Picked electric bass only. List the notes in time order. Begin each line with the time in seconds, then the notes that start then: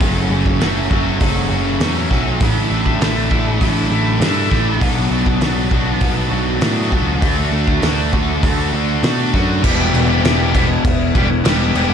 0.01 F#1
0.30 F#1
0.60 F#1
0.91 F#1
1.21 F#1
1.51 F#1
1.80 E2
2.11 B1
2.41 A1
2.70 A1
3.00 A1
3.31 A1
3.61 A1
3.90 A1
4.20 G2
4.52 A1
4.81 B1
5.10 B1
5.41 B1
5.71 B1
6.01 B1
6.31 B1
6.62 A2
6.92 C#2
7.22 D2
7.52 D2
7.82 D2
8.13 D2
8.43 D2
8.73 D2
9.03 B2
9.34 F#2
9.64 E1
9.93 E1
10.24 E1
10.84 E1
11.15 E1
11.45 E1
11.75 E1